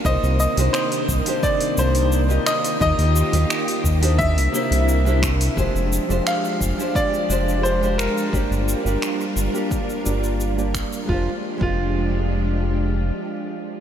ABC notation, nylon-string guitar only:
X:1
M:4/4
L:1/16
Q:1/4=87
K:Fdor
V:1 name="Nylon-string guitar"
[B,CEGc]3 [B,DEGc]4 [B,DEGc]3 [B,DEGc]3 [B,EFGe]3 | [B,EFGe]3 [B,EFGe]4 [B,D=EGc]3 [B,DEGc]3 [B,DEGc]3 | [A,DFGc]3 [A,DFGc]4 [A,DFGc]3 [A,DFGc]3 [A,DFGc]3 | [B,DFGd]3 [B,DFGd]4 [B,DFGd]3 [B,DFGd]3 [B,DFGd]3 |
[A,DFGc] z2 [A,DFGc]12- [A,DFGc] |]